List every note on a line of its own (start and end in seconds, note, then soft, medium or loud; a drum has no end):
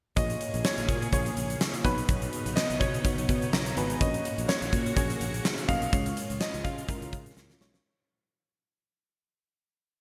0.16 0.35 A#1 loud
0.16 7.81 C#3 medium
0.16 1.05 A#3 medium
0.16 1.83 A#3 medium
0.16 1.05 F4 medium
0.16 1.83 G#4 medium
0.16 1.06 G#4 medium
0.16 1.06 C#5 medium
0.16 0.61 D#5 loud
0.16 kick loud
0.16 closed hi-hat medium
0.16 shaker medium
0.30 closed hi-hat medium
0.30 shaker soft
0.41 closed hi-hat medium
0.54 0.62 A#1 medium
0.54 closed hi-hat soft
0.54 shaker soft
0.65 1.11 C#5 medium
0.65 snare loud
0.65 shaker medium
0.78 0.86 A#1 medium
0.78 closed hi-hat medium
0.78 shaker soft
0.89 1.07 A#2 medium
0.89 kick medium
0.89 closed hi-hat medium
0.89 shaker soft
1.02 closed hi-hat soft
1.02 shaker soft
1.12 1.31 A#1 medium
1.12 1.79 A#3 medium
1.12 1.79 F4 medium
1.12 1.79 G#4 medium
1.12 1.57 C#5 medium
1.12 1.80 C#5 medium
1.12 kick medium
1.12 closed hi-hat medium
1.12 shaker medium
1.26 closed hi-hat medium
1.26 shaker soft
1.37 1.55 A#1 medium
1.37 closed hi-hat medium
1.37 shaker soft
1.50 closed hi-hat soft
1.50 shaker soft
1.61 snare loud
1.61 shaker medium
1.74 closed hi-hat medium
1.74 shaker soft
1.84 2.03 B1 medium
1.84 2.73 B3 medium
1.84 3.99 B3 medium
1.84 2.73 D#4 medium
1.84 3.99 D#4 medium
1.84 2.74 F#4 medium
1.84 2.59 B4 medium
1.84 2.74 C#5 medium
1.84 kick medium
1.84 closed hi-hat medium
1.84 shaker soft
1.98 closed hi-hat medium
1.98 shaker soft
2.09 2.27 B1 loud
2.09 kick loud
2.09 closed hi-hat medium
2.09 shaker medium
2.22 closed hi-hat medium
2.22 shaker soft
2.33 closed hi-hat medium
2.46 2.54 B1 medium
2.46 closed hi-hat soft
2.46 shaker soft
2.56 2.81 D#5 loud
2.56 snare loud
2.56 shaker medium
2.70 2.78 B1 medium
2.70 closed hi-hat medium
2.70 shaker soft
2.80 2.99 B2 loud
2.80 3.72 C#5 loud
2.80 kick medium
2.80 closed hi-hat medium
2.80 shaker soft
2.94 closed hi-hat soft
2.94 shaker soft
3.04 3.71 B3 medium
3.04 3.71 D#4 medium
3.04 3.71 F#4 medium
3.04 3.72 C#5 medium
3.04 kick loud
3.04 closed hi-hat medium
3.04 shaker medium
3.18 3.26 B1 medium
3.18 closed hi-hat medium
3.18 shaker soft
3.29 3.47 B2 medium
3.29 kick medium
3.29 closed hi-hat medium
3.29 shaker soft
3.42 closed hi-hat soft
3.42 shaker soft
3.53 3.71 B1 medium
3.53 3.75 A#5 medium
3.53 snare loud
3.53 shaker medium
3.66 closed hi-hat medium
3.66 shaker soft
3.76 3.95 G#1 medium
3.76 3.99 B3 medium
3.76 3.99 D#4 medium
3.76 3.99 F#4 medium
3.76 3.99 B4 medium
3.76 3.99 G#5 medium
3.76 closed hi-hat medium
3.76 shaker soft
3.90 closed hi-hat medium
3.90 shaker soft
4.00 4.19 A#1 medium
4.00 4.89 A#3 medium
4.00 5.91 A#3 medium
4.00 4.89 C#4 medium
4.00 5.91 F#4 medium
4.00 4.90 F#4 medium
4.00 4.90 C#5 medium
4.00 4.50 D#5 loud
4.00 kick loud
4.00 closed hi-hat medium
4.00 shaker medium
4.14 closed hi-hat medium
4.14 shaker soft
4.25 closed hi-hat medium
4.38 4.46 A#1 medium
4.38 closed hi-hat soft
4.38 shaker soft
4.48 4.95 C#5 medium
4.48 snare loud
4.48 shaker medium
4.62 4.70 A#1 medium
4.62 closed hi-hat medium
4.62 shaker soft
4.73 4.91 A#2 loud
4.73 kick medium
4.73 closed hi-hat medium
4.73 shaker medium
4.86 closed hi-hat soft
4.86 shaker soft
4.96 5.15 A#1 loud
4.96 5.63 A#3 medium
4.96 5.63 C#4 medium
4.96 5.63 F#4 medium
4.96 5.64 G#4 medium
4.96 5.41 C#5 medium
4.96 kick medium
4.96 closed hi-hat medium
4.96 shaker medium
5.10 closed hi-hat medium
5.10 shaker soft
5.21 5.39 A#1 medium
5.21 closed hi-hat medium
5.21 shaker soft
5.34 closed hi-hat medium
5.34 shaker soft
5.45 snare loud
5.45 shaker medium
5.58 closed hi-hat medium
5.58 shaker soft
5.68 5.87 B1 medium
5.68 5.91 A#3 medium
5.68 5.91 C#4 medium
5.68 5.91 F#4 medium
5.68 5.91 D#5 medium
5.68 6.37 F5 loud
5.68 kick medium
5.68 closed hi-hat medium
5.68 shaker soft
5.82 closed hi-hat medium
5.82 shaker soft
5.92 6.11 C#2 loud
5.92 6.81 G#3 medium
5.92 7.83 G#3 medium
5.92 6.81 C#4 medium
5.92 7.83 F4 medium
5.92 6.82 F4 medium
5.92 6.82 C#5 medium
5.92 kick loud
5.92 closed hi-hat medium
5.92 shaker medium
6.06 closed hi-hat medium
6.06 shaker soft
6.17 closed hi-hat medium
6.30 6.38 C#2 medium
6.30 closed hi-hat soft
6.30 shaker soft
6.40 6.65 D#5 loud
6.40 snare loud
6.40 shaker medium
6.54 6.62 C#2 loud
6.54 closed hi-hat medium
6.54 shaker soft
6.64 6.83 C#3 medium
6.64 7.57 F5 medium
6.64 kick medium
6.64 closed hi-hat medium
6.64 shaker soft
6.78 closed hi-hat soft
6.78 shaker soft
6.88 7.55 G#3 medium
6.88 7.55 C#4 medium
6.88 6.95 E4 soft
6.88 7.56 A#4 medium
6.88 kick medium
6.88 closed hi-hat medium
6.88 shaker medium
6.95 7.58 F4 medium
7.02 7.10 C#2 medium
7.02 closed hi-hat medium
7.02 shaker soft
7.13 7.31 C#3 medium
7.13 kick medium
7.13 closed hi-hat medium
7.13 shaker soft
7.26 closed hi-hat medium
7.26 shaker soft
7.37 7.55 C#2 medium
7.37 snare medium
7.37 shaker medium
7.50 snare medium
7.50 shaker soft
7.60 7.79 B1 medium
7.60 7.83 G#3 medium
7.60 7.83 C#4 medium
7.60 7.83 F4 medium
7.60 7.83 C#5 medium
7.60 snare medium
7.74 snare medium
7.74 shaker soft